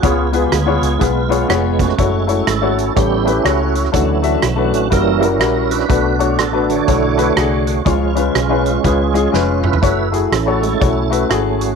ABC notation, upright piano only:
X:1
M:4/4
L:1/16
Q:"Swing" 1/4=122
K:F#m
V:1 name="Upright piano"
[B,^EGc] z [B,EGB]2 z [B,EGc]2 z [B,EGB] z [B,EGc] z [B,EGc]3 z | [A,EFc] z [A,EFc]2 z [A,EFc]2 z [A,E=Gc] z [A,EGB] z [A,EGc]3 z | [A,DFc] z [A,DFe]2 z [A,DFB]2 z [=G,EF^A] z [G,EFA] z [G,EFA]3 z | [A,DFB] z [A,DFc]2 z [A,DFB]2 z [A,DFc] z [A,DFB] z [A,DFG]3 z |
[G,C^Ec] z [G,CEB]2 z [G,CEB]2 z [G,CEB] z [G,CEG] z [G,CEB]3 z | [A,EFc] z [A,EFG]2 z [A,EFc]2 z [A,EFc] z [A,EFB] z [A,EFG]3 z |]
V:2 name="Upright piano" clef=bass
C,6 z8 z2 | z8 A,,6 z2 | D,6 z8 z2 | B,,6 z8 z2 |
C,6 z8 z2 | z16 |]